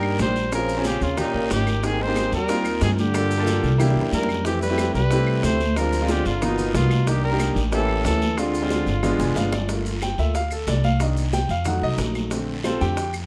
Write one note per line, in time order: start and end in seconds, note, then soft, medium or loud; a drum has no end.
0.00 0.16 G2 medium
0.00 0.16 G3 medium
0.00 0.32 A#3 medium
0.00 0.32 D4 medium
0.00 0.32 D#4 medium
0.00 0.33 G4 medium
0.00 0.17 A#4 loud
0.00 high conga soft
0.00 claves medium
0.19 0.96 A#1 medium
0.19 0.50 G3 medium
0.19 0.51 C5 loud
0.19 high bongo medium
0.19 low bongo medium
0.19 high conga medium
0.19 short guiro medium
0.19 maracas medium
0.36 high conga medium
0.36 short guiro medium
0.36 maracas soft
0.52 0.84 F3 medium
0.52 0.69 C4 medium
0.52 0.69 C#4 medium
0.52 0.69 F4 medium
0.52 0.70 G#4 medium
0.52 0.84 A#4 loud
0.52 high bongo medium
0.52 high conga soft
0.52 long guiro medium
0.52 claves medium
0.52 maracas medium
0.69 high bongo soft
0.69 high conga soft
0.69 maracas medium
0.77 1.05 C4 medium
0.77 1.06 C#4 medium
0.77 1.06 F4 medium
0.77 1.06 G#4 medium
0.84 1.02 C#3 medium
0.84 1.04 G4 medium
0.84 high bongo medium
0.84 high conga medium
0.84 short guiro medium
0.84 maracas medium
1.01 1.32 D#2 medium
1.01 1.18 C#3 medium
1.01 1.18 F4 medium
1.01 high conga soft
1.01 short guiro medium
1.01 maracas soft
1.16 1.49 A#2 medium
1.16 1.63 A#3 medium
1.16 1.63 C#4 medium
1.16 1.49 D#4 medium
1.16 1.63 F4 medium
1.16 1.64 G4 medium
1.16 high bongo medium
1.16 high conga soft
1.16 low conga medium
1.16 long guiro medium
1.16 claves medium
1.16 maracas medium
1.34 1.49 A#1 medium
1.34 high bongo soft
1.34 high conga soft
1.51 2.27 G#1 medium
1.51 1.84 D#3 medium
1.51 1.87 G4 loud
1.51 high bongo medium
1.51 low bongo medium
1.51 high conga medium
1.51 short guiro medium
1.51 maracas medium
1.67 high bongo soft
1.67 high conga medium
1.67 short guiro medium
1.67 claves medium
1.67 maracas soft
1.82 2.02 D#3 medium
1.82 2.00 A#3 medium
1.82 2.00 C4 medium
1.82 2.00 D#4 medium
1.82 2.01 G4 medium
1.82 2.03 G#4 loud
1.82 high bongo medium
1.82 high conga soft
1.82 long guiro medium
1.82 maracas medium
2.00 2.33 G#3 medium
2.00 2.33 C5 loud
2.00 high conga soft
2.07 2.36 A#3 medium
2.07 2.36 C4 medium
2.07 2.37 D#4 medium
2.07 2.37 G4 medium
2.16 high bongo medium
2.16 high conga loud
2.16 short guiro medium
2.16 claves medium
2.16 maracas medium
2.32 2.78 D#2 medium
2.32 2.70 G3 medium
2.32 2.79 A#4 loud
2.32 high conga soft
2.32 short guiro medium
2.32 maracas soft
2.48 2.94 A#3 medium
2.48 2.95 C4 medium
2.48 2.95 D#4 medium
2.48 2.95 F4 medium
2.48 high bongo medium
2.48 high conga soft
2.48 long guiro medium
2.48 maracas medium
2.65 high conga soft
2.65 claves medium
2.65 maracas medium
2.81 3.58 G2 loud
2.81 2.90 D#3 medium
2.81 2.90 G#4 loud
2.81 high bongo medium
2.81 low bongo medium
2.81 high conga medium
2.81 short guiro medium
2.81 maracas medium
2.98 3.82 D3 medium
2.98 3.83 G4 loud
2.98 high conga medium
2.98 short guiro medium
2.98 maracas soft
3.14 3.31 A#3 medium
3.14 3.31 D4 medium
3.14 3.32 F4 medium
3.14 3.32 A4 medium
3.14 high bongo medium
3.14 high conga soft
3.14 long guiro medium
3.14 claves medium
3.14 maracas medium
3.31 high bongo soft
3.31 high conga soft
3.31 maracas medium
3.38 3.67 A#3 medium
3.38 3.67 D4 medium
3.38 3.68 F4 medium
3.38 3.68 A4 loud
3.47 high bongo medium
3.47 high conga medium
3.47 short guiro medium
3.47 maracas medium
3.63 3.94 C2 medium
3.63 high conga soft
3.63 short guiro medium
3.63 maracas soft
3.78 4.25 A#3 medium
3.78 4.25 D4 medium
3.78 4.25 E4 medium
3.78 4.26 G4 medium
3.78 high bongo medium
3.78 high conga soft
3.78 low conga medium
3.78 long guiro medium
3.78 claves medium
3.78 maracas medium
3.90 high bongo medium
3.96 4.12 E2 medium
3.96 high conga soft
4.01 low bongo medium
4.12 4.89 F2 loud
4.12 4.43 G3 medium
4.12 4.44 A#4 loud
4.12 high conga medium
4.12 short guiro medium
4.12 maracas medium
4.23 low bongo medium
4.29 high conga medium
4.29 short guiro medium
4.29 claves medium
4.29 maracas soft
4.34 low bongo medium
4.45 4.61 E3 medium
4.45 4.62 A3 medium
4.45 4.63 C4 medium
4.45 4.63 E4 medium
4.45 4.61 G4 loud
4.45 4.63 G4 medium
4.45 high bongo medium
4.45 high conga soft
4.45 long guiro medium
4.45 maracas medium
4.62 4.92 G3 medium
4.62 4.93 B4 loud
4.62 high conga soft
4.62 maracas medium
4.70 4.99 A3 medium
4.70 4.99 C4 medium
4.70 4.99 E4 medium
4.70 5.00 G4 medium
4.78 high bongo medium
4.78 high conga medium
4.78 short guiro medium
4.78 claves medium
4.78 maracas medium
4.94 5.40 C2 medium
4.94 5.41 G3 medium
4.94 5.40 B4 loud
4.94 high conga soft
4.94 short guiro medium
4.94 maracas soft
5.11 5.57 A3 medium
5.11 5.57 C4 medium
5.11 5.58 E4 medium
5.11 5.58 G4 medium
5.11 high bongo medium
5.11 high conga soft
5.11 long guiro medium
5.11 maracas medium
5.27 high conga soft
5.27 claves medium
5.43 6.20 D2 medium
5.43 5.74 A3 medium
5.43 5.74 C5 loud
5.43 high bongo medium
5.43 low bongo medium
5.43 high conga medium
5.43 short guiro medium
5.43 maracas medium
5.60 high conga medium
5.60 short guiro medium
5.60 maracas soft
5.76 6.12 F3 medium
5.76 5.93 G#3 medium
5.76 5.94 C4 medium
5.76 5.94 D4 medium
5.76 5.94 F4 medium
5.76 6.12 A#4 loud
5.76 high bongo medium
5.76 long guiro medium
5.76 claves medium
5.76 maracas medium
5.93 high bongo soft
5.93 high conga soft
5.93 maracas medium
6.00 6.29 G#3 medium
6.00 6.30 C4 medium
6.00 6.30 D4 medium
6.00 6.30 F4 medium
6.09 6.26 D3 medium
6.09 6.28 G4 medium
6.09 high bongo medium
6.09 high conga loud
6.09 short guiro medium
6.09 maracas medium
6.25 6.71 G1 medium
6.25 6.45 D3 medium
6.25 6.44 F4 medium
6.25 high conga soft
6.25 short guiro medium
6.25 maracas soft
6.41 6.74 B2 medium
6.41 6.87 A#3 medium
6.41 6.88 B3 medium
6.41 6.88 D#4 medium
6.41 6.75 D#4 medium
6.41 6.88 F4 medium
6.41 high bongo medium
6.41 high conga soft
6.41 low conga medium
6.41 long guiro medium
6.41 claves medium
6.41 maracas medium
6.58 high bongo soft
6.58 high conga soft
6.58 low conga medium
6.58 maracas medium
6.74 7.51 C2 loud
6.74 7.09 B2 medium
6.74 7.10 F4 medium
6.74 high bongo medium
6.74 low bongo medium
6.74 high conga medium
6.74 short guiro medium
6.74 maracas medium
6.91 high bongo soft
6.91 high conga medium
6.91 short guiro medium
6.91 claves medium
6.91 maracas soft
7.07 7.24 D#3 medium
7.07 7.24 A#3 medium
7.07 7.25 D4 medium
7.07 7.25 D#4 medium
7.07 7.25 G4 medium
7.07 7.24 G4 medium
7.07 high bongo medium
7.07 high conga soft
7.07 long guiro medium
7.07 maracas medium
7.24 7.55 G3 medium
7.24 7.55 A#4 medium
7.24 high conga soft
7.31 7.60 A#3 medium
7.31 7.60 D4 medium
7.31 7.61 D#4 medium
7.31 7.61 G4 medium
7.40 high bongo medium
7.40 high conga loud
7.40 short guiro medium
7.40 claves medium
7.40 maracas medium
7.56 8.02 A1 loud
7.56 high conga soft
7.56 short guiro medium
7.56 maracas soft
7.72 8.03 E3 medium
7.72 8.18 A#3 medium
7.72 8.18 C#4 medium
7.72 8.19 E4 medium
7.72 8.19 G4 medium
7.72 8.04 A4 medium
7.72 high bongo medium
7.72 high conga soft
7.72 long guiro medium
7.72 maracas medium
7.89 high conga soft
7.89 claves medium
8.05 8.81 D2 loud
8.05 8.40 E3 medium
8.05 8.40 A4 loud
8.05 high bongo medium
8.05 low bongo medium
8.05 high conga medium
8.05 short guiro medium
8.05 maracas medium
8.22 high conga medium
8.22 short guiro medium
8.22 maracas soft
8.37 9.36 D3 medium
8.37 8.55 G#3 medium
8.37 8.55 C4 medium
8.37 8.56 D4 medium
8.37 9.37 F4 medium
8.37 8.56 F4 medium
8.37 high bongo medium
8.37 long guiro medium
8.37 claves medium
8.37 maracas medium
8.54 high bongo soft
8.54 maracas medium
8.62 8.91 G#3 medium
8.62 8.91 C4 medium
8.62 8.91 D4 medium
8.62 8.92 F4 medium
8.70 high bongo medium
8.70 high conga loud
8.70 short guiro medium
8.70 maracas medium
8.86 9.17 G1 medium
8.86 high conga soft
8.86 short guiro medium
8.86 maracas soft
9.03 9.49 G#3 medium
9.03 9.49 B3 medium
9.03 9.50 D4 medium
9.03 9.50 F4 loud
9.03 high bongo medium
9.03 high conga soft
9.03 low conga medium
9.03 long guiro medium
9.03 claves medium
9.03 maracas medium
9.19 9.35 F1 medium
9.19 9.36 G#5 medium
9.19 high bongo medium
9.19 high conga soft
9.19 low conga medium
9.19 maracas medium
9.36 10.12 G1 medium
9.36 9.52 F5 medium
9.36 low bongo loud
9.36 high conga medium
9.36 short guiro medium
9.36 maracas medium
9.52 9.68 D5 medium
9.52 low bongo medium
9.52 high conga medium
9.52 short guiro medium
9.52 claves medium
9.52 maracas soft
9.69 9.91 A3 soft
9.69 9.91 A#3 soft
9.69 9.92 F4 medium
9.69 high bongo medium
9.69 high conga soft
9.69 long guiro medium
9.69 maracas medium
9.86 high conga soft
9.86 maracas medium
10.01 10.18 G5 medium
10.01 high bongo medium
10.01 high conga medium
10.01 short guiro medium
10.01 claves medium
10.01 maracas medium
10.18 10.64 D2 medium
10.18 10.33 A3 soft
10.18 10.33 A#3 soft
10.18 10.34 F4 soft
10.18 10.35 E5 medium
10.18 high conga soft
10.18 short guiro medium
10.18 maracas soft
10.35 10.51 F5 medium
10.35 high bongo medium
10.35 high conga soft
10.35 long guiro medium
10.35 maracas medium
10.51 10.68 A4 medium
10.51 high conga soft
10.51 claves medium
10.51 maracas medium
10.67 11.43 C2 medium
10.67 10.84 D5 medium
10.67 high bongo medium
10.67 low bongo medium
10.67 high conga medium
10.67 short guiro medium
10.67 maracas medium
10.84 11.00 F5 loud
10.84 high conga medium
10.84 short guiro medium
10.84 maracas soft
11.00 11.23 D#3 medium
11.00 11.23 A#3 soft
11.00 11.23 D4 medium
11.00 11.32 D#5 medium
11.00 high bongo medium
11.00 high conga soft
11.00 long guiro medium
11.00 claves medium
11.00 maracas medium
11.17 high bongo soft
11.17 high conga soft
11.17 maracas medium
11.33 11.49 G5 medium
11.33 high bongo medium
11.33 high conga medium
11.33 short guiro medium
11.33 maracas medium
11.49 11.80 F2 medium
11.49 11.66 F5 medium
11.49 high conga soft
11.49 short guiro medium
11.49 maracas soft
11.65 12.28 F#3 medium
11.65 12.28 A3 soft
11.65 12.29 D#4 medium
11.65 11.82 F#5 medium
11.65 high bongo medium
11.65 high conga soft
11.65 low conga medium
11.65 long guiro medium
11.65 claves medium
11.65 maracas medium
11.82 11.97 C2 medium
11.82 11.93 D#5 loud
11.82 high bongo soft
11.82 high conga soft
11.98 12.75 A#1 medium
11.98 high bongo medium
11.98 low bongo medium
11.98 high conga medium
11.98 short guiro medium
11.98 maracas medium
12.15 high bongo soft
12.15 high conga medium
12.15 short guiro medium
12.15 claves medium
12.15 maracas soft
12.31 12.53 D3 medium
12.31 12.54 A3 soft
12.31 12.54 C4 medium
12.31 high bongo medium
12.31 high conga soft
12.31 long guiro medium
12.31 maracas medium
12.49 high conga soft
12.64 12.80 C4 medium
12.64 12.81 F4 medium
12.64 12.80 A4 medium
12.64 12.81 C5 medium
12.64 high bongo medium
12.64 high conga loud
12.64 short guiro medium
12.64 claves medium
12.64 maracas medium
12.81 13.26 F2 medium
12.81 12.96 D3 soft
12.81 12.96 A3 soft
12.81 12.96 C4 medium
12.81 13.12 G4 medium
12.81 13.12 G5 loud
12.81 high conga soft
12.81 short guiro medium
12.81 maracas soft
12.97 high bongo medium
12.97 high conga soft
12.97 long guiro medium
12.97 maracas medium
13.13 high conga soft
13.13 claves medium
13.13 maracas medium